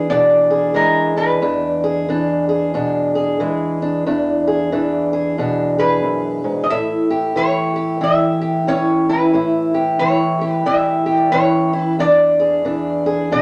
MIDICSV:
0, 0, Header, 1, 3, 480
1, 0, Start_track
1, 0, Tempo, 660793
1, 1026, Time_signature, 4, 2, 24, 8
1, 9747, End_track
2, 0, Start_track
2, 0, Title_t, "Resonator guitar played with a steel bar"
2, 0, Program_c, 0, 25
2, 0, Note_on_c, 0, 71, 88
2, 71, Note_on_c, 0, 74, 83
2, 79, Note_off_c, 0, 71, 0
2, 552, Note_on_c, 0, 70, 81
2, 563, Note_off_c, 0, 74, 0
2, 822, Note_off_c, 0, 70, 0
2, 853, Note_on_c, 0, 71, 76
2, 2256, Note_off_c, 0, 71, 0
2, 4209, Note_on_c, 0, 71, 82
2, 4820, Note_on_c, 0, 75, 68
2, 4849, Note_off_c, 0, 71, 0
2, 4862, Note_off_c, 0, 75, 0
2, 4868, Note_on_c, 0, 76, 89
2, 5353, Note_on_c, 0, 73, 94
2, 5360, Note_off_c, 0, 76, 0
2, 5837, Note_on_c, 0, 76, 84
2, 5843, Note_off_c, 0, 73, 0
2, 6308, Note_on_c, 0, 73, 86
2, 6325, Note_off_c, 0, 76, 0
2, 6603, Note_off_c, 0, 73, 0
2, 6606, Note_on_c, 0, 71, 81
2, 7241, Note_off_c, 0, 71, 0
2, 7258, Note_on_c, 0, 73, 92
2, 7636, Note_off_c, 0, 73, 0
2, 7636, Note_on_c, 0, 71, 92
2, 7746, Note_on_c, 0, 76, 86
2, 7757, Note_off_c, 0, 71, 0
2, 8124, Note_off_c, 0, 76, 0
2, 8124, Note_on_c, 0, 74, 86
2, 8222, Note_on_c, 0, 73, 93
2, 8242, Note_off_c, 0, 74, 0
2, 8563, Note_off_c, 0, 73, 0
2, 8563, Note_on_c, 0, 71, 93
2, 8677, Note_off_c, 0, 71, 0
2, 8718, Note_on_c, 0, 74, 105
2, 9675, Note_off_c, 0, 74, 0
2, 9678, Note_on_c, 0, 76, 89
2, 9747, Note_off_c, 0, 76, 0
2, 9747, End_track
3, 0, Start_track
3, 0, Title_t, "Steel-string acoustic guitar"
3, 0, Program_c, 1, 25
3, 0, Note_on_c, 1, 40, 77
3, 0, Note_on_c, 1, 52, 62
3, 0, Note_on_c, 1, 56, 59
3, 0, Note_on_c, 1, 62, 62
3, 0, Note_on_c, 1, 68, 66
3, 73, Note_on_c, 1, 47, 64
3, 74, Note_off_c, 1, 62, 0
3, 76, Note_on_c, 1, 62, 64
3, 364, Note_off_c, 1, 68, 0
3, 367, Note_on_c, 1, 68, 60
3, 535, Note_off_c, 1, 52, 0
3, 538, Note_on_c, 1, 52, 62
3, 539, Note_off_c, 1, 56, 0
3, 542, Note_on_c, 1, 56, 59
3, 550, Note_off_c, 1, 47, 0
3, 844, Note_off_c, 1, 62, 0
3, 847, Note_on_c, 1, 62, 58
3, 1027, Note_off_c, 1, 40, 0
3, 1030, Note_on_c, 1, 40, 80
3, 1031, Note_off_c, 1, 62, 0
3, 1034, Note_on_c, 1, 62, 65
3, 1054, Note_off_c, 1, 68, 0
3, 1334, Note_on_c, 1, 68, 65
3, 1512, Note_off_c, 1, 52, 0
3, 1515, Note_on_c, 1, 52, 59
3, 1520, Note_off_c, 1, 62, 0
3, 1523, Note_on_c, 1, 62, 59
3, 1804, Note_off_c, 1, 68, 0
3, 1807, Note_on_c, 1, 68, 68
3, 1990, Note_on_c, 1, 47, 67
3, 1993, Note_off_c, 1, 62, 0
3, 1996, Note_on_c, 1, 62, 66
3, 2281, Note_off_c, 1, 68, 0
3, 2290, Note_on_c, 1, 68, 59
3, 2463, Note_off_c, 1, 56, 0
3, 2465, Note_off_c, 1, 52, 0
3, 2467, Note_off_c, 1, 47, 0
3, 2468, Note_on_c, 1, 52, 62
3, 2475, Note_on_c, 1, 56, 56
3, 2763, Note_off_c, 1, 62, 0
3, 2776, Note_on_c, 1, 62, 58
3, 2928, Note_off_c, 1, 68, 0
3, 2931, Note_off_c, 1, 62, 0
3, 2944, Note_off_c, 1, 40, 0
3, 2952, Note_on_c, 1, 40, 74
3, 2957, Note_on_c, 1, 62, 60
3, 3250, Note_on_c, 1, 68, 63
3, 3426, Note_off_c, 1, 62, 0
3, 3427, Note_off_c, 1, 52, 0
3, 3430, Note_on_c, 1, 52, 65
3, 3435, Note_on_c, 1, 62, 56
3, 3718, Note_off_c, 1, 68, 0
3, 3726, Note_on_c, 1, 68, 69
3, 3909, Note_off_c, 1, 62, 0
3, 3909, Note_on_c, 1, 47, 66
3, 3918, Note_on_c, 1, 62, 62
3, 4192, Note_off_c, 1, 68, 0
3, 4201, Note_on_c, 1, 68, 60
3, 4380, Note_off_c, 1, 40, 0
3, 4383, Note_on_c, 1, 42, 59
3, 4675, Note_off_c, 1, 42, 0
3, 4678, Note_on_c, 1, 44, 59
3, 4843, Note_off_c, 1, 68, 0
3, 4848, Note_off_c, 1, 62, 0
3, 4864, Note_off_c, 1, 44, 0
3, 4867, Note_off_c, 1, 47, 0
3, 4869, Note_off_c, 1, 56, 0
3, 4875, Note_on_c, 1, 45, 73
3, 4882, Note_on_c, 1, 64, 57
3, 5160, Note_on_c, 1, 67, 62
3, 5340, Note_off_c, 1, 52, 0
3, 5343, Note_on_c, 1, 52, 62
3, 5345, Note_off_c, 1, 64, 0
3, 5348, Note_on_c, 1, 64, 58
3, 5632, Note_off_c, 1, 67, 0
3, 5635, Note_on_c, 1, 67, 67
3, 5816, Note_off_c, 1, 64, 0
3, 5817, Note_off_c, 1, 52, 0
3, 5817, Note_on_c, 1, 52, 65
3, 5819, Note_on_c, 1, 64, 61
3, 6103, Note_off_c, 1, 67, 0
3, 6112, Note_on_c, 1, 67, 61
3, 6300, Note_off_c, 1, 52, 0
3, 6300, Note_on_c, 1, 52, 60
3, 6306, Note_on_c, 1, 61, 60
3, 6602, Note_off_c, 1, 64, 0
3, 6605, Note_on_c, 1, 64, 58
3, 6759, Note_off_c, 1, 67, 0
3, 6763, Note_off_c, 1, 61, 0
3, 6768, Note_off_c, 1, 45, 0
3, 6780, Note_on_c, 1, 45, 72
3, 6785, Note_off_c, 1, 64, 0
3, 6788, Note_on_c, 1, 64, 61
3, 7077, Note_on_c, 1, 67, 60
3, 7269, Note_off_c, 1, 52, 0
3, 7272, Note_on_c, 1, 52, 64
3, 7275, Note_off_c, 1, 64, 0
3, 7278, Note_on_c, 1, 64, 58
3, 7555, Note_off_c, 1, 67, 0
3, 7564, Note_on_c, 1, 67, 67
3, 7742, Note_off_c, 1, 52, 0
3, 7742, Note_on_c, 1, 52, 65
3, 7751, Note_off_c, 1, 64, 0
3, 7753, Note_on_c, 1, 64, 67
3, 8025, Note_off_c, 1, 67, 0
3, 8033, Note_on_c, 1, 67, 58
3, 8227, Note_off_c, 1, 52, 0
3, 8227, Note_on_c, 1, 52, 67
3, 8233, Note_on_c, 1, 61, 60
3, 8519, Note_off_c, 1, 64, 0
3, 8522, Note_on_c, 1, 64, 62
3, 8683, Note_off_c, 1, 67, 0
3, 8684, Note_off_c, 1, 45, 0
3, 8689, Note_off_c, 1, 61, 0
3, 8708, Note_on_c, 1, 40, 74
3, 8709, Note_off_c, 1, 64, 0
3, 8712, Note_on_c, 1, 62, 63
3, 9005, Note_on_c, 1, 68, 63
3, 9183, Note_off_c, 1, 52, 0
3, 9186, Note_on_c, 1, 52, 64
3, 9189, Note_off_c, 1, 62, 0
3, 9192, Note_on_c, 1, 62, 61
3, 9484, Note_off_c, 1, 68, 0
3, 9487, Note_on_c, 1, 68, 69
3, 9672, Note_on_c, 1, 47, 68
3, 9674, Note_off_c, 1, 62, 0
3, 9677, Note_on_c, 1, 62, 65
3, 9747, Note_off_c, 1, 40, 0
3, 9747, Note_off_c, 1, 47, 0
3, 9747, Note_off_c, 1, 52, 0
3, 9747, Note_off_c, 1, 62, 0
3, 9747, Note_off_c, 1, 68, 0
3, 9747, End_track
0, 0, End_of_file